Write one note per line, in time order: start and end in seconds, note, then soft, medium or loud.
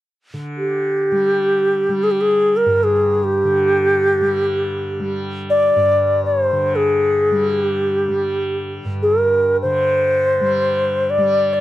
0.34 3.44 D3 soft
0.57 2.05 G4 medium
1.12 1.89 G3 soft
1.89 4.21 G3 soft
2.04 2.13 G#4 medium
2.11 2.23 G4 medium
2.21 2.58 G#4 medium
2.57 2.85 A#4 medium
2.66 5.76 G2 medium
2.84 3.26 G#4 medium
3.24 5.14 G4 medium
3.44 6.52 D3 soft
4.21 5.00 G3 soft
5.00 7.31 G3 soft
5.50 6.23 D5 medium
5.76 8.85 G2 soft
6.25 6.43 C#5 medium
6.43 6.77 C5 medium
6.52 9.64 D3 soft
6.76 7.50 G#4 medium
7.31 8.08 G3 soft
7.50 7.65 G#4 medium
7.65 8.72 G4 medium
8.08 10.40 G3 soft
8.85 11.61 G2 soft
9.03 9.57 A#4 medium
9.62 11.61 D3 soft
9.62 11.12 C5 medium
10.40 11.18 G3 soft
11.10 11.55 D5 medium
11.18 11.61 G3 soft
11.54 11.61 C#5 medium